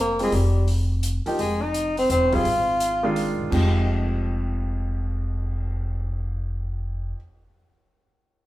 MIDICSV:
0, 0, Header, 1, 7, 480
1, 0, Start_track
1, 0, Key_signature, -4, "minor"
1, 0, Tempo, 355450
1, 432, Time_signature, 3, 2, 24, 8
1, 11428, End_track
2, 0, Start_track
2, 0, Title_t, "Grand piano"
2, 0, Program_c, 0, 0
2, 265, Note_on_c, 0, 55, 54
2, 271, Note_on_c, 0, 60, 55
2, 274, Note_on_c, 0, 65, 49
2, 276, Note_on_c, 0, 68, 61
2, 416, Note_off_c, 0, 55, 0
2, 419, Note_off_c, 0, 60, 0
2, 421, Note_off_c, 0, 65, 0
2, 422, Note_off_c, 0, 68, 0
2, 1699, Note_on_c, 0, 53, 64
2, 1703, Note_on_c, 0, 58, 58
2, 1715, Note_on_c, 0, 63, 63
2, 1717, Note_on_c, 0, 67, 77
2, 1853, Note_off_c, 0, 53, 0
2, 1855, Note_off_c, 0, 58, 0
2, 1861, Note_off_c, 0, 63, 0
2, 1862, Note_off_c, 0, 67, 0
2, 3141, Note_on_c, 0, 55, 62
2, 3141, Note_on_c, 0, 60, 58
2, 3148, Note_on_c, 0, 65, 57
2, 3154, Note_on_c, 0, 68, 73
2, 3294, Note_off_c, 0, 55, 0
2, 3294, Note_off_c, 0, 60, 0
2, 3297, Note_off_c, 0, 65, 0
2, 3300, Note_off_c, 0, 68, 0
2, 4095, Note_on_c, 0, 51, 68
2, 4102, Note_on_c, 0, 56, 58
2, 4104, Note_on_c, 0, 62, 64
2, 4115, Note_on_c, 0, 65, 76
2, 4713, Note_off_c, 0, 51, 0
2, 4717, Note_off_c, 0, 56, 0
2, 4718, Note_off_c, 0, 62, 0
2, 4723, Note_off_c, 0, 65, 0
2, 4735, Note_on_c, 0, 41, 61
2, 4744, Note_on_c, 0, 53, 54
2, 4758, Note_on_c, 0, 56, 53
2, 4766, Note_on_c, 0, 63, 53
2, 4775, Note_on_c, 0, 67, 63
2, 9648, Note_off_c, 0, 41, 0
2, 9652, Note_off_c, 0, 53, 0
2, 9659, Note_off_c, 0, 56, 0
2, 9663, Note_off_c, 0, 63, 0
2, 9668, Note_off_c, 0, 67, 0
2, 11428, End_track
3, 0, Start_track
3, 0, Title_t, "Tenor saxophone"
3, 0, Program_c, 1, 66
3, 4, Note_on_c, 1, 58, 80
3, 268, Note_off_c, 1, 58, 0
3, 307, Note_on_c, 1, 56, 74
3, 465, Note_on_c, 1, 55, 69
3, 485, Note_off_c, 1, 56, 0
3, 928, Note_off_c, 1, 55, 0
3, 1885, Note_on_c, 1, 56, 76
3, 2187, Note_on_c, 1, 63, 88
3, 2207, Note_off_c, 1, 56, 0
3, 2663, Note_off_c, 1, 63, 0
3, 2681, Note_on_c, 1, 60, 85
3, 2830, Note_off_c, 1, 60, 0
3, 2847, Note_on_c, 1, 60, 86
3, 3173, Note_on_c, 1, 65, 91
3, 3193, Note_off_c, 1, 60, 0
3, 4287, Note_off_c, 1, 65, 0
3, 11428, End_track
4, 0, Start_track
4, 0, Title_t, "Upright bass"
4, 0, Program_c, 2, 32
4, 0, Note_on_c, 2, 29, 79
4, 374, Note_off_c, 2, 29, 0
4, 434, Note_on_c, 2, 29, 79
4, 1648, Note_off_c, 2, 29, 0
4, 1873, Note_on_c, 2, 29, 75
4, 2778, Note_off_c, 2, 29, 0
4, 2829, Note_on_c, 2, 28, 77
4, 3276, Note_off_c, 2, 28, 0
4, 3315, Note_on_c, 2, 32, 80
4, 4528, Note_off_c, 2, 32, 0
4, 4583, Note_on_c, 2, 31, 66
4, 4740, Note_off_c, 2, 31, 0
4, 4755, Note_on_c, 2, 29, 80
4, 9604, Note_off_c, 2, 29, 0
4, 11428, End_track
5, 0, Start_track
5, 0, Title_t, "Cymbal swell"
5, 5067, Note_on_c, 9, 59, 39
5, 7531, Note_off_c, 9, 59, 0
5, 11428, End_track
6, 0, Start_track
6, 0, Title_t, "Muted upright bass strokes"
6, 1700, Note_on_c, 9, 29, 34
6, 1835, Note_off_c, 9, 29, 0
6, 11428, End_track
7, 0, Start_track
7, 0, Title_t, "Drums"
7, 259, Note_on_c, 9, 46, 37
7, 394, Note_off_c, 9, 46, 0
7, 435, Note_on_c, 9, 46, 46
7, 570, Note_off_c, 9, 46, 0
7, 913, Note_on_c, 9, 46, 44
7, 1048, Note_off_c, 9, 46, 0
7, 1390, Note_on_c, 9, 42, 50
7, 1525, Note_off_c, 9, 42, 0
7, 1703, Note_on_c, 9, 46, 33
7, 1838, Note_off_c, 9, 46, 0
7, 1874, Note_on_c, 9, 46, 45
7, 2010, Note_off_c, 9, 46, 0
7, 2354, Note_on_c, 9, 42, 52
7, 2489, Note_off_c, 9, 42, 0
7, 2664, Note_on_c, 9, 46, 37
7, 2799, Note_off_c, 9, 46, 0
7, 2833, Note_on_c, 9, 42, 53
7, 2968, Note_off_c, 9, 42, 0
7, 3139, Note_on_c, 9, 46, 36
7, 3144, Note_on_c, 9, 36, 54
7, 3274, Note_off_c, 9, 46, 0
7, 3279, Note_off_c, 9, 36, 0
7, 3309, Note_on_c, 9, 46, 43
7, 3444, Note_off_c, 9, 46, 0
7, 3785, Note_on_c, 9, 42, 52
7, 3920, Note_off_c, 9, 42, 0
7, 4269, Note_on_c, 9, 46, 40
7, 4404, Note_off_c, 9, 46, 0
7, 4754, Note_on_c, 9, 36, 51
7, 4756, Note_on_c, 9, 49, 59
7, 4889, Note_off_c, 9, 36, 0
7, 4891, Note_off_c, 9, 49, 0
7, 11428, End_track
0, 0, End_of_file